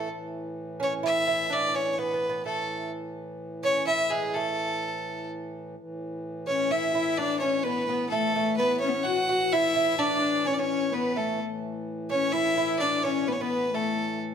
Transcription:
0.10 5.76 A2 medium
0.10 5.75 E3 medium
0.80 1.04 C#4 medium
0.80 0.93 C#5 medium
1.03 1.26 E4 medium
1.03 1.54 E5 loud
1.27 1.50 E4 medium
1.50 1.67 D4 medium
1.50 1.77 D5 loud
1.68 1.74 D4 soft
1.74 1.98 C#4 medium
1.74 1.92 C#5 medium
1.92 2.00 C#5 medium
1.98 2.13 B3 medium
1.98 2.45 B4 medium
2.14 2.28 B3 medium
2.29 2.45 B3 medium
2.45 2.90 A3 medium
2.45 2.90 A4 medium
3.63 3.88 C#4 medium
3.63 3.86 C#5 medium
3.87 4.12 E4 medium
3.87 4.11 E5 loud
4.10 4.36 G#3 medium
4.10 4.36 G#4 medium
4.34 5.26 A3 medium
4.34 5.29 A4 medium
5.77 11.39 A2 medium
5.77 11.39 E3 medium
6.47 6.71 C#4 medium
6.47 6.72 C#4 medium
6.47 6.73 C#5 medium
6.70 6.94 E4 medium
6.70 7.19 E5 medium
6.94 7.20 E4 medium
6.94 7.18 E4 medium
7.18 7.42 D4 medium
7.18 7.39 D5 medium
7.40 7.65 C#4 medium
7.40 7.64 C#4 medium
7.40 7.65 C#5 medium
7.63 7.88 B3 medium
7.63 7.87 B3 medium
7.63 8.09 B4 medium
7.89 8.12 B3 medium
7.89 8.11 B3 medium
8.09 8.35 A3 medium
8.09 8.34 A3 medium
8.09 8.54 A4 medium
8.36 8.60 A3 medium
8.36 8.59 A3 medium
8.57 8.81 B3 medium
8.57 9.08 B3 medium
8.57 8.79 B4 loud
8.80 8.90 C#4 medium
8.80 9.05 C#5 medium
8.88 8.96 B3 medium
8.94 9.06 C#4 medium
9.03 9.28 F#4 medium
9.03 9.54 F#5 loud
9.29 9.52 F#4 medium
9.29 9.54 F#4 medium
9.52 9.75 E4 medium
9.52 9.99 E4 medium
9.52 10.01 E5 loud
9.76 9.98 E4 medium
9.99 10.20 D4 medium
9.99 10.49 D4 medium
9.99 10.48 D5 loud
10.22 10.47 D4 medium
10.45 10.58 C#4 medium
10.45 10.61 C#4 medium
10.45 10.55 C#5 medium
10.54 10.60 D5 medium
10.59 10.92 C#4 medium
10.59 10.95 C#5 medium
10.92 11.16 B3 medium
10.92 11.19 B3 medium
10.92 11.19 B4 medium
11.16 11.38 A3 medium
11.16 11.41 A3 medium
11.16 11.40 A4 medium
11.40 14.35 A2 medium
11.40 14.35 E3 medium
12.10 12.34 C#4 medium
12.10 12.33 C#4 medium
12.10 12.34 C#5 medium
12.32 12.56 E4 medium
12.32 12.82 E4 medium
12.32 12.79 E5 medium
12.57 12.80 E4 medium
12.79 13.05 D4 medium
12.79 13.04 D4 medium
12.79 13.04 D5 loud
13.03 13.27 C#4 medium
13.03 13.29 C#4 medium
13.03 13.29 C#5 medium
13.28 13.40 B3 medium
13.28 13.41 B3 medium
13.28 13.34 B4 medium
13.32 13.42 C#5 medium
13.40 13.74 B3 medium
13.40 13.72 B3 medium
13.40 13.76 B4 medium
13.73 14.17 A3 medium
13.73 14.18 A3 medium
13.73 14.21 A4 medium

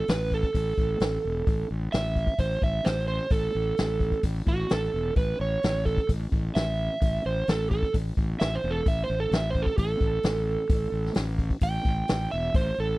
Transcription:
0.08 0.40 A1 medium
0.08 0.32 B4 medium
0.08 snare loud
0.08 open hi-hat medium
0.31 1.68 A4 medium
0.31 kick medium
0.43 kick medium
0.55 0.71 A1 loud
0.55 kick medium
0.55 open hi-hat medium
0.78 0.94 A1 medium
0.78 kick medium
1.00 1.17 A1 medium
1.00 snare loud
1.00 open hi-hat soft
1.25 1.41 E1 medium
1.47 1.63 A1 loud
1.47 kick medium
1.47 open hi-hat soft
1.71 1.86 A1 medium
1.92 2.25 A1 medium
1.92 2.38 E5 loud
1.92 snare loud
1.92 open hi-hat medium
2.16 kick medium
2.27 kick medium
2.38 2.55 A1 medium
2.38 2.62 C5 medium
2.38 kick medium
2.38 open hi-hat medium
2.62 2.79 A1 medium
2.62 2.86 E5 medium
2.62 kick medium
2.85 3.18 A1 medium
2.85 3.07 C5 medium
2.85 snare loud
2.85 open hi-hat medium
3.08 3.31 C5 medium
3.30 3.47 A1 medium
3.30 4.21 A4 medium
3.30 kick medium
3.30 open hi-hat medium
3.55 3.71 A1 medium
3.77 4.11 A1 medium
3.77 snare loud
3.77 open hi-hat medium
4.00 kick medium
4.12 kick medium
4.23 4.40 A1 medium
4.23 kick medium
4.23 open hi-hat medium
4.47 4.63 A1 medium
4.47 4.70 F#4 medium
4.47 kick medium
4.69 4.87 A1 medium
4.69 5.16 A4 medium
4.69 snare loud
4.69 open hi-hat medium
4.94 5.10 E1 medium
5.16 5.32 A1 loud
5.16 5.40 B4 medium
5.16 kick medium
5.16 open hi-hat soft
5.40 5.56 A1 medium
5.40 5.85 C#5 medium
5.63 5.95 A1 medium
5.63 snare loud
5.63 open hi-hat soft
5.85 6.08 A4 medium
5.85 kick medium
5.97 kick medium
6.09 6.25 A1 loud
6.09 kick medium
6.09 open hi-hat medium
6.32 6.48 A1 medium
6.32 kick medium
6.55 6.87 A1 medium
6.55 7.23 E5 loud
6.55 snare loud
6.55 open hi-hat medium
7.02 7.18 A1 loud
7.02 kick medium
7.02 open hi-hat medium
7.25 7.41 A1 medium
7.25 7.48 C5 medium
7.48 7.80 A1 medium
7.48 7.70 A4 medium
7.48 snare loud
7.48 open hi-hat medium
7.71 7.93 A4 medium
7.71 kick medium
7.82 kick medium
7.94 8.10 A1 loud
7.94 kick loud
7.94 open hi-hat medium
8.17 8.33 A1 medium
8.17 kick medium
8.40 8.57 A1 medium
8.40 8.55 E5 medium
8.40 snare loud
8.40 open hi-hat medium
8.55 8.70 C5 medium
8.64 8.79 E1 medium
8.71 8.86 A4 medium
8.86 9.02 A1 medium
8.86 9.02 E5 medium
8.86 kick medium
8.86 open hi-hat soft
9.04 9.17 C5 medium
9.10 9.25 A1 medium
9.20 9.33 A4 medium
9.31 9.63 A1 medium
9.31 9.48 E5 loud
9.31 snare loud
9.31 open hi-hat medium
9.50 9.64 C5 medium
9.55 kick medium
9.62 9.77 A4 medium
9.66 kick medium
9.77 9.94 A1 medium
9.77 11.13 A4 medium
9.77 kick medium
9.77 open hi-hat medium
10.01 10.17 A1 medium
10.01 kick medium
10.23 10.56 A1 medium
10.23 snare loud
10.23 open hi-hat medium
10.69 10.86 A1 loud
10.69 kick loud
10.69 open hi-hat medium
10.92 11.08 A1 medium
11.06 snare soft
11.14 11.48 A1 medium
11.14 snare loud
11.14 open hi-hat medium
11.39 kick medium
11.50 kick medium
11.61 11.78 A1 loud
11.61 12.30 G5 medium
11.61 kick medium
11.61 open hi-hat medium
11.85 12.01 A1 medium
11.85 kick medium
12.08 12.26 A1 medium
12.08 snare loud
12.08 open hi-hat medium
12.31 12.48 E1 medium
12.31 12.54 E5 medium
12.54 12.70 A1 loud
12.54 12.77 C5 medium
12.54 kick loud
12.54 open hi-hat medium
12.78 12.94 A1 medium
12.78 12.98 A4 medium

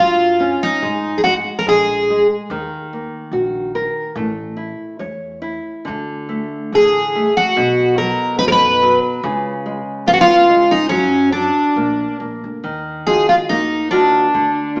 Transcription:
0.00 0.52 G2 medium
0.00 0.38 F#3 soft
0.00 0.63 F4 medium
0.40 0.81 C#4 medium
0.63 1.20 D#4 medium
0.82 1.38 G#2 medium
0.82 1.24 G#3 medium
1.18 1.23 G#4 medium
1.24 1.66 G#3 soft
1.24 1.33 F#4 medium
1.59 1.66 A#4 medium
1.66 2.21 A#1 medium
1.66 2.08 G#3 soft
1.66 2.27 G#4 loud
2.10 2.50 G#3 medium
2.50 3.03 D#2 medium
2.50 4.11 D#3 medium
2.93 3.32 A#3 soft
3.31 3.86 A#1 medium
3.31 3.73 F#4 medium
3.75 4.15 A#4 medium
4.15 4.70 A1 medium
4.15 5.83 A3 medium
4.57 4.98 E4 soft
4.99 5.56 E2 medium
4.99 5.41 C#5 soft
5.42 5.85 E4 medium
5.85 6.44 D2 medium
5.85 6.72 D3 medium
6.29 6.71 A3 soft
6.72 7.27 A1 medium
6.72 7.14 D3 soft
6.72 7.37 G#4 medium
7.15 7.56 A3 medium
7.37 7.98 F#4 medium
7.56 8.11 B1 loud
7.56 9.19 B2 medium
7.98 8.39 F#3 medium
7.98 8.37 A#4 medium
8.39 8.95 F#2 medium
8.39 8.80 D#4 medium
8.39 8.46 B4 medium
8.48 8.52 A#4 medium
8.52 8.99 B4 medium
8.82 9.23 F#3 medium
9.23 9.78 C#2 loud
9.23 10.86 C#3 medium
9.66 10.06 G#3 soft
10.06 10.61 G#1 medium
10.06 10.47 B3 soft
10.06 10.13 F4 loud
10.14 10.20 F#4 medium
10.21 10.71 F4 loud
10.49 10.90 G#3 medium
10.71 10.89 D#4 medium
10.89 11.47 F#2 medium
10.89 11.33 F#3 medium
10.89 11.30 C#4 medium
11.32 11.76 F#3 soft
11.32 12.16 D4 medium
11.76 12.05 A#1 medium
11.76 12.19 A#3 soft
12.20 12.40 A#1 medium
12.20 12.62 A#3 soft
12.44 12.63 D2 medium
12.64 13.20 D#2 medium
12.64 13.47 D#3 medium
13.07 13.75 D#4 soft
13.07 13.75 F4 soft
13.07 13.75 F#4 soft
13.07 13.28 G#4 medium
13.29 13.35 F4 medium
13.49 14.04 D#2 medium
13.49 14.31 A#3 medium
13.49 13.90 D#4 medium
13.91 14.25 D#3 medium
13.91 14.80 D4 medium
13.91 14.25 F4 soft
13.91 14.25 F#4 medium
14.34 14.80 D2 medium
14.34 14.80 D3 medium
14.76 14.80 A#3 soft
14.76 14.80 D4 soft
14.76 14.80 F4 soft

